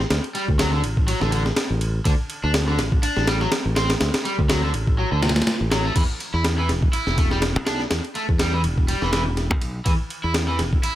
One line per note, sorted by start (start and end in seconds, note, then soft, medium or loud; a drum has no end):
0.10 0.19 D2 loud
0.10 snare loud
0.10 ride medium
0.24 ride soft
0.35 0.44 G3 medium
0.35 ride medium
0.48 0.83 D2 medium
0.48 kick medium
0.59 0.71 F#3 medium
0.59 snare loud
0.59 ride medium
0.73 0.80 D3 medium
0.83 1.13 A1 medium
0.83 ride medium
0.97 kick medium
1.08 1.20 F#3 medium
1.08 ride medium
1.21 1.50 A1 loud
1.21 1.29 D3 medium
1.21 snare soft
1.32 1.42 D3 medium
1.32 ride medium
1.46 snare medium
1.57 snare loud
1.57 ride medium
1.70 1.99 A1 medium
1.81 ride medium
2.05 2.14 D2 loud
2.05 2.11 D3 medium
2.05 kick loud
2.05 ride medium
2.30 ride medium
2.44 2.79 D2 medium
2.44 2.51 D4 medium
2.54 snare loud
2.54 ride medium
2.68 2.78 D3 medium
2.79 3.03 A1 medium
2.79 snare medium
2.79 ride medium
2.92 kick medium
3.03 3.26 D4 medium
3.03 muted fingered electric bass stroke soft
3.03 ride medium
3.17 3.45 A1 loud
3.17 snare soft
3.27 3.37 G3 medium
3.27 snare loud
3.27 ride medium
3.41 3.49 F#3 loud
3.41 snare medium
3.52 snare loud
3.52 ride medium
3.66 3.94 A1 medium
3.76 3.89 C4 loud
3.76 snare loud
3.76 ride medium
3.90 snare loud
3.90 ride medium
4.01 4.09 D2 loud
4.01 snare loud
4.01 ride medium
4.14 snare loud
4.14 ride medium
4.25 4.35 G3 medium
4.25 ride medium
4.39 4.74 D2 medium
4.39 kick loud
4.49 4.62 F#3 medium
4.49 snare loud
4.49 ride medium
4.63 4.71 D3 medium
4.74 5.04 A1 medium
4.74 ride medium
4.87 kick medium
4.98 5.11 F#3 medium
5.12 5.40 D2 medium
5.12 5.20 D3 medium
5.22 5.28 C3 medium
5.22 snare medium
5.22 ride medium
5.29 snare loud
5.29 ride medium
5.36 snare medium
5.36 ride medium
5.42 snare medium
5.42 ride medium
5.47 snare loud
5.47 ride medium
5.61 5.89 A1 medium
5.72 5.84 F#3 medium
5.72 snare loud
5.72 ride medium
5.85 5.93 A3 medium
5.96 6.04 E2 loud
5.96 6.02 E3 medium
5.96 kick loud
5.96 crash medium
5.96 ride medium
6.20 ride medium
6.34 6.71 E2 medium
6.34 6.42 E4 medium
6.45 snare loud
6.45 ride medium
6.58 6.68 E3 medium
6.69 6.93 E1 medium
6.69 snare medium
6.69 ride medium
6.82 kick loud
6.93 7.17 E4 medium
6.93 muted fingered electric bass stroke soft
6.93 ride medium
7.07 7.56 E1 loud
7.07 snare soft
7.18 7.27 A3 medium
7.18 kick loud
7.18 ride medium
7.31 7.39 G3 loud
7.31 snare medium
7.42 snare loud
7.42 ride medium
7.56 7.84 B1 medium
7.66 7.79 D4 loud
7.66 snare loud
7.66 ride medium
7.80 snare soft
7.91 7.99 E2 medium
7.91 snare loud
7.91 ride medium
8.05 ride soft
8.15 8.25 A3 medium
8.15 ride medium
8.29 8.66 E2 medium
8.29 kick loud
8.39 8.52 G3 medium
8.39 snare loud
8.39 ride medium
8.53 8.61 E3 medium
8.64 8.94 E1 medium
8.64 ride medium
8.78 kick medium
8.88 9.01 G3 medium
8.88 ride medium
9.02 9.51 E1 medium
9.02 9.10 E3 medium
9.02 snare soft
9.12 9.22 E3 medium
9.12 snare loud
9.12 ride medium
9.37 snare soft
9.37 ride medium
9.51 9.79 B1 medium
9.51 kick medium
9.62 ride medium
9.85 9.94 E2 medium
9.85 9.91 E3 medium
9.85 kick loud
9.85 ride medium
10.10 ride medium
10.24 10.61 E2 medium
10.24 10.32 E4 medium
10.34 snare loud
10.34 ride medium
10.48 10.59 E3 medium
10.59 10.83 E1 medium
10.59 snare medium
10.59 ride medium
10.73 kick medium
10.83 10.95 E4 medium
10.83 muted fingered electric bass stroke soft
10.83 ride medium